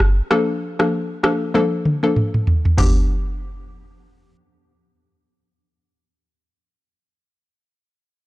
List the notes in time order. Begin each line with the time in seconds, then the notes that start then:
0.00 kick, cross-stick
0.31 F3 A#3 D4 A4, cross-stick
0.79 F3 A#3 D4 A4, cross-stick
1.23 F3 A#3 D4 A4, cross-stick
1.54 F3 A#3 D4 A4, high tom
1.85 mid tom
2.03 F3 A#3 D4 A4
2.16 mid tom
2.34 mid tom
2.47 floor tom
2.65 floor tom
2.78 F3 B3 D4 G4, kick, floor tom, open hi-hat